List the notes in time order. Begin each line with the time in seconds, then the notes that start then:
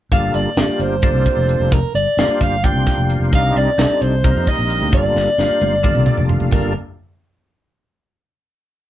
0.11 G1 G3 A#3 D4 F4 A4 F5, kick, closed hi-hat
0.34 G1 D5, closed hi-hat
0.57 G1 G3 A#3 D4 F4 G4, snare, closed hi-hat
0.69 muted fretless electric bass stroke
0.79 G1 C5, closed hi-hat
1.02 G3 A#3 D4 F4 A4, kick, closed hi-hat
1.14 C2
1.26 kick, closed hi-hat
1.37 F1
1.49 closed hi-hat
1.60 F1
1.72 A#4, kick, closed hi-hat
1.95 G1 D5, closed hi-hat
2.17 G1 G3 A#3 D4 F4 C5, snare, closed hi-hat
2.41 G1 F5, kick, closed hi-hat
2.64 G3 A#3 D4 F4 C5 G5, kick, closed hi-hat
2.74 C2
2.87 kick, snare, closed hi-hat
2.98 F1
3.10 closed hi-hat
3.20 F1
3.32 C2 G3 C4 D4 D#4 A#4 F5, kick, closed hi-hat
3.56 C2 D5, closed hi-hat
3.78 C2 G3 C4 D4 D#4 A4, snare, closed hi-hat
4.01 C2 C5, closed hi-hat
4.24 G3 A#3 C4 D#4 A#4, kick, closed hi-hat
4.36 F2
4.47 D#5, kick, closed hi-hat
4.59 A#1
4.70 closed hi-hat
4.82 D2
4.92 G1 G3 A#3 D4 F4 A4 D5, kick, closed hi-hat
5.15 G1, snare
5.38 G1 G3 A#3 D4 F4 C5, snare
5.50 muted fretless electric bass stroke
5.61 G1, high tom
5.83 G3 A#3 D4 F4 A4, kick, mid tom
5.95 C2, mid tom
6.06 D5, mid tom
6.17 F1, floor tom
6.29 F5, floor tom
6.40 F1, floor tom
6.51 G1 G3 A#3 D4 F4 A4 A#4, kick, floor tom, splash